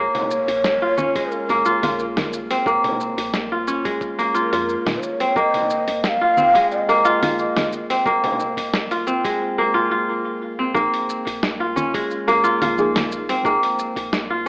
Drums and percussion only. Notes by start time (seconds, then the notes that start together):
0.15 open hi-hat, frame drum
0.31 shaker
0.48 open hi-hat, shaker
0.64 snare, shaker
0.98 low conga, shaker
1.15 kick, open hi-hat, shaker
1.31 shaker
1.49 open hi-hat, shaker
1.65 shaker
1.83 open hi-hat, low conga, shaker
1.99 shaker
2.17 snare, open hi-hat, low conga, shaker
2.33 shaker
2.51 open hi-hat, shaker
2.66 kick, shaker
2.84 open hi-hat, frame drum
3.00 shaker
3.18 open hi-hat, shaker
3.34 snare, shaker
3.67 shaker
3.85 kick, open hi-hat, shaker
4.01 kick, shaker
4.19 open hi-hat, shaker
4.35 shaker
4.53 open hi-hat, shaker
4.69 shaker
4.86 kick, snare, open hi-hat, low conga, shaker
5.03 shaker
5.20 open hi-hat, shaker
5.36 kick, shaker
5.54 open hi-hat, frame drum
5.70 shaker
5.88 open hi-hat, shaker
6.04 snare, shaker
6.37 low conga, shaker
6.55 kick, open hi-hat, shaker
6.71 shaker
6.89 open hi-hat, shaker
7.05 shaker
7.23 open hi-hat, low conga, shaker
7.39 shaker
7.57 snare, open hi-hat, low conga, shaker
7.73 shaker
7.90 open hi-hat, shaker
8.06 kick, shaker
8.24 open hi-hat, frame drum
8.40 shaker
8.57 kick, open hi-hat, shaker
8.74 snare, shaker
8.91 open hi-hat, shaker
9.07 shaker
9.25 kick, open hi-hat, shaker
10.75 kick, shaker
10.94 open hi-hat
11.09 shaker
11.27 kick, open hi-hat, shaker
11.43 snare, shaker
11.77 low conga, shaker
11.94 kick, open hi-hat, shaker
12.11 shaker
12.28 open hi-hat, shaker
12.44 shaker
12.62 open hi-hat, low conga, shaker
12.78 shaker
12.96 snare, open hi-hat, low conga, shaker
13.12 shaker
13.29 open hi-hat, shaker
13.45 kick, shaker
13.63 open hi-hat
13.79 shaker
13.96 kick, open hi-hat, shaker
14.13 snare, shaker